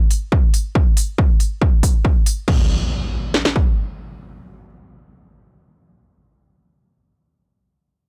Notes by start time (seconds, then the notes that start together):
0.11 open hi-hat
0.32 kick
0.54 open hi-hat
0.75 kick
0.97 open hi-hat
1.18 kick
1.40 open hi-hat
1.62 kick
1.83 kick, open hi-hat
2.05 kick
2.26 open hi-hat
2.48 kick, crash, impact
3.34 snare
3.45 snare
3.56 kick